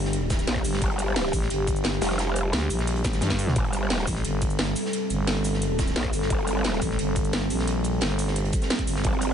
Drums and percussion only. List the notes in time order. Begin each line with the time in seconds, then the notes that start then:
0.05 snare
0.13 closed hi-hat
0.30 kick, snare, closed hi-hat, cabasa
0.39 snare, closed hi-hat, cabasa
0.47 snare, closed hi-hat
0.56 kick, snare
0.65 closed hi-hat, open hi-hat, cabasa
0.73 snare
0.81 kick, closed hi-hat
0.99 closed hi-hat, cabasa
1.16 snare, closed hi-hat
1.25 snare
1.33 kick, closed hi-hat, open hi-hat, cabasa
1.42 snare
1.50 closed hi-hat
1.67 kick, closed hi-hat, cabasa
1.76 closed hi-hat, cabasa
1.84 snare, closed hi-hat
2.02 snare, closed hi-hat, open hi-hat, cabasa
2.10 snare
2.18 snare, closed hi-hat
2.36 closed hi-hat, cabasa
2.53 snare, closed hi-hat
2.70 closed hi-hat, open hi-hat, cabasa
2.79 snare, closed hi-hat
2.87 closed hi-hat
2.96 closed hi-hat
3.04 kick, snare, closed hi-hat, cabasa
3.13 snare, closed hi-hat, cabasa
3.21 snare, closed hi-hat, mid tom
3.30 kick, snare, closed hi-hat
3.39 closed hi-hat, open hi-hat, cabasa
3.47 snare, mid tom
3.56 kick, closed hi-hat
3.64 closed hi-hat
3.73 closed hi-hat, cabasa
3.90 snare, closed hi-hat
3.99 snare
4.07 kick, closed hi-hat, open hi-hat, cabasa
4.15 snare
4.25 closed hi-hat
4.42 kick, closed hi-hat, cabasa
4.50 closed hi-hat, cabasa
4.59 snare, closed hi-hat
4.76 closed hi-hat, open hi-hat, cabasa
4.86 snare
4.93 closed hi-hat
5.10 closed hi-hat, cabasa
5.27 snare, closed hi-hat
5.45 closed hi-hat, open hi-hat, cabasa
5.54 snare
5.62 closed hi-hat
5.79 kick, snare, closed hi-hat, cabasa
5.87 snare, closed hi-hat, cabasa
5.96 snare, closed hi-hat
6.04 kick, snare
6.13 closed hi-hat, open hi-hat, cabasa
6.22 snare
6.30 kick, closed hi-hat
6.38 closed hi-hat
6.47 closed hi-hat, cabasa
6.64 snare, closed hi-hat
6.73 snare
6.81 kick, closed hi-hat, open hi-hat, cabasa
6.91 snare
6.99 closed hi-hat
7.16 kick, closed hi-hat, cabasa
7.25 closed hi-hat, cabasa
7.33 snare, closed hi-hat
7.50 closed hi-hat, open hi-hat, cabasa
7.59 snare
7.67 closed hi-hat
7.84 closed hi-hat, cabasa
8.01 snare, closed hi-hat
8.19 closed hi-hat, open hi-hat, cabasa
8.27 snare
8.36 closed hi-hat
8.45 closed hi-hat
8.52 kick, closed hi-hat, cabasa
8.62 snare, closed hi-hat, cabasa
8.70 snare, closed hi-hat, cabasa
8.78 kick, closed hi-hat
8.87 closed hi-hat, open hi-hat, cabasa
8.96 snare
9.04 kick, closed hi-hat
9.13 closed hi-hat
9.21 closed hi-hat, cabasa